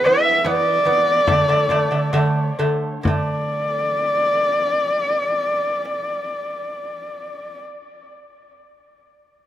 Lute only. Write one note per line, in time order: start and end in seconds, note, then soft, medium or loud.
0.05 0.37 E3 medium
0.05 0.38 B3 medium
0.45 0.77 E3 medium
0.45 0.78 B3 loud
0.85 1.19 E3 medium
0.85 1.19 B3 medium
1.27 1.44 D3 loud
1.27 1.45 A3 loud
1.48 1.66 D3 medium
1.48 1.66 A3 medium
1.70 1.88 D3 medium
1.70 1.88 A3 loud
1.91 2.09 D3 medium
1.91 2.10 A3 medium
2.13 2.50 D3 loud
2.13 2.50 A3 loud
2.59 2.96 D3 medium
2.59 2.96 A3 loud
3.03 7.63 D3 medium
3.07 7.67 A3 medium